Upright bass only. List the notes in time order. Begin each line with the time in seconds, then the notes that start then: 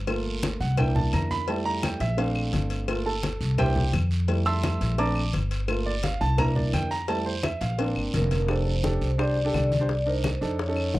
Already playing: G1
0.60 C2
1.13 F2
2.00 A#1
2.53 G1
3.41 C2
3.93 F2
4.81 A#1
5.34 G1
6.21 C2
6.73 F2
7.61 A#1
7.96 G1
8.14 F1
9.01 C2
9.54 C2
10.42 F2
10.94 A#1